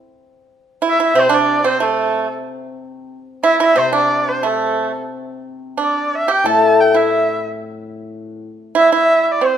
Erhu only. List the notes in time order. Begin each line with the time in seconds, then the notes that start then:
0.89 E5
1.05 E5
1.20 C5
1.34 D5
1.66 C5
1.83 A4
3.44 E5
3.62 E5
3.79 C5
3.96 D5
4.29 C5
4.46 A4
5.82 D5
6.15 E5
6.31 G5
6.47 A5
6.80 G5
6.96 E5
8.78 E5
8.95 E5
9.23 E5
9.32 D5
9.46 C5